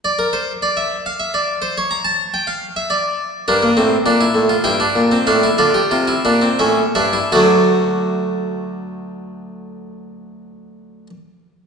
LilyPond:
<<
  \new Staff \with { instrumentName = "Harpsichord" } { \time 3/4 \key g \dorian \tempo 4 = 95 << { d''16 bes'16 c''8 d''16 e''8 f''16 e''16 d''8 c''16 | cis''16 bes''16 a''8 g''16 f''8 e''16 d''4 | bes'2 g''4 | f''8 d''4. e''8 e''8 |
<fis a d''>2.~ | <fis a d''>2. | } \\ { r2. | r2. | d'16 bes16 c'8 d'16 e'8 f'16 e'16 d'8 c'16 | d'16 e'16 f'16 g'16 f'16 e'16 d'16 c'16 cis'8 d'16 e'16 |
fis'2.~ | fis'2. | } >> }
  \new Staff \with { instrumentName = "Harpsichord" } { \clef bass \time 3/4 \key g \dorian r2. | r2. | g,8 a,8 bes,8 a,8 g,8 bes,8 | a,8 d8 c8 bes,8 a,8 g,8 |
d,2.~ | d,2. | }
>>